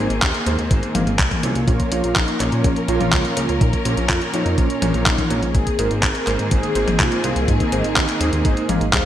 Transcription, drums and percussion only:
0.10 closed hi-hat soft
0.22 kick loud
0.22 clap loud
0.22 closed hi-hat medium
0.34 closed hi-hat soft
0.46 closed hi-hat medium
0.59 closed hi-hat soft
0.71 kick loud
0.71 closed hi-hat medium
0.83 closed hi-hat soft
0.95 closed hi-hat medium
0.95 high tom medium
1.07 closed hi-hat soft
1.19 kick loud
1.19 clap loud
1.19 closed hi-hat medium
1.31 kick medium
1.31 closed hi-hat soft
1.31 high tom medium
1.43 closed hi-hat medium
1.55 closed hi-hat soft
1.68 kick loud
1.68 closed hi-hat medium
1.80 kick medium
1.80 closed hi-hat soft
1.92 closed hi-hat medium
2.04 closed hi-hat soft
2.16 kick loud
2.16 clap loud
2.16 closed hi-hat medium
2.28 closed hi-hat soft
2.40 clap soft
2.40 closed hi-hat medium
2.52 closed hi-hat soft
2.64 kick loud
2.64 closed hi-hat medium
2.76 closed hi-hat soft
2.88 closed hi-hat medium
3.01 closed hi-hat soft
3.01 high tom medium
3.13 kick loud
3.13 clap loud
3.13 closed hi-hat medium
3.25 closed hi-hat soft
3.37 closed hi-hat medium
3.49 closed hi-hat soft
3.61 kick loud
3.61 closed hi-hat medium
3.73 kick medium
3.73 closed hi-hat soft
3.85 closed hi-hat medium
3.97 closed hi-hat soft
4.09 kick loud
4.09 clap loud
4.09 closed hi-hat medium
4.22 closed hi-hat soft
4.34 closed hi-hat medium
4.46 closed hi-hat soft
4.58 kick loud
4.58 closed hi-hat medium
4.70 closed hi-hat soft
4.82 closed hi-hat medium
4.82 high tom medium
4.94 closed hi-hat soft
5.06 kick loud
5.06 clap loud
5.06 closed hi-hat medium
5.18 kick medium
5.18 closed hi-hat soft
5.18 high tom medium
5.31 closed hi-hat medium
5.43 closed hi-hat soft
5.55 kick loud
5.55 closed hi-hat medium
5.67 kick medium
5.67 closed hi-hat soft
5.79 closed hi-hat medium
5.91 closed hi-hat soft
6.03 kick loud
6.03 clap loud
6.03 closed hi-hat medium
6.15 closed hi-hat soft
6.27 clap soft
6.27 closed hi-hat medium
6.39 closed hi-hat soft
6.51 kick loud
6.51 closed hi-hat medium
6.63 closed hi-hat soft
6.75 closed hi-hat medium
6.88 closed hi-hat soft
6.88 high tom medium
7.00 kick loud
7.00 clap loud
7.00 closed hi-hat medium
7.12 closed hi-hat soft
7.24 closed hi-hat medium
7.36 closed hi-hat soft
7.48 kick loud
7.48 closed hi-hat medium
7.60 kick medium
7.60 closed hi-hat soft
7.72 closed hi-hat medium
7.84 closed hi-hat soft
7.96 kick loud
7.96 clap loud
7.96 closed hi-hat medium
8.09 clap soft
8.09 closed hi-hat soft
8.21 closed hi-hat medium
8.33 closed hi-hat soft
8.45 kick loud
8.45 closed hi-hat medium
8.57 closed hi-hat soft
8.69 closed hi-hat loud
8.69 high tom medium
8.81 closed hi-hat soft
8.93 kick loud
8.93 snare medium
8.93 clap loud
8.93 closed hi-hat medium

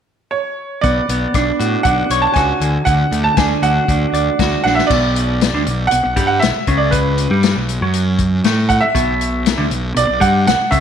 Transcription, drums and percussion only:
0.83 kick medium
0.83 closed hi-hat soft
1.09 closed hi-hat medium
1.34 kick loud
1.34 cross-stick loud
1.34 closed hi-hat medium
1.60 closed hi-hat medium
1.85 kick loud
1.85 closed hi-hat medium
2.10 closed hi-hat medium
2.36 kick loud
2.36 cross-stick loud
2.36 closed hi-hat medium
2.61 closed hi-hat medium
2.86 kick medium
2.86 closed hi-hat medium
3.12 closed hi-hat medium
3.37 kick loud
3.37 snare loud
3.37 closed hi-hat medium
3.63 closed hi-hat medium
3.88 kick loud
3.88 closed hi-hat medium
4.14 closed hi-hat medium
4.39 kick loud
4.39 snare loud
4.39 closed hi-hat medium
4.66 snare medium
4.79 snare medium
4.90 kick medium
4.90 crash medium
5.16 closed hi-hat medium
5.41 snare loud
5.41 closed hi-hat medium
5.66 closed hi-hat medium
5.91 closed hi-hat medium
6.16 kick medium
6.16 closed hi-hat medium
6.42 snare loud
6.42 closed hi-hat medium
6.67 kick medium
6.67 closed hi-hat medium
6.92 kick loud
6.92 closed hi-hat medium
7.18 closed hi-hat medium
7.43 snare loud
7.43 closed hi-hat medium
7.68 closed hi-hat medium
7.93 closed hi-hat medium
8.18 kick medium
8.18 closed hi-hat medium
8.44 snare loud
8.44 closed hi-hat medium
8.70 kick medium
8.70 closed hi-hat medium
8.95 kick loud
8.95 closed hi-hat medium
9.21 closed hi-hat medium
9.46 snare loud
9.46 closed hi-hat medium
9.71 closed hi-hat medium
9.96 closed hi-hat medium
10.21 kick medium
10.21 closed hi-hat medium
10.47 snare loud
10.47 closed hi-hat medium
10.72 kick medium
10.72 closed hi-hat medium

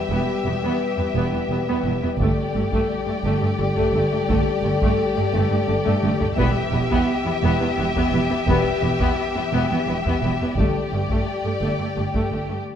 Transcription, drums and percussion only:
2.20 taiko medium
2.72 taiko medium
3.77 taiko medium
4.30 taiko medium
4.82 taiko medium
5.86 taiko low-mid medium
6.03 taiko low-mid medium
6.21 taiko low medium
6.39 taiko medium
6.91 taiko medium
7.96 taiko medium
8.48 taiko medium
9.01 taiko medium
10.05 taiko medium
10.58 taiko medium
11.10 taiko medium
12.14 taiko medium

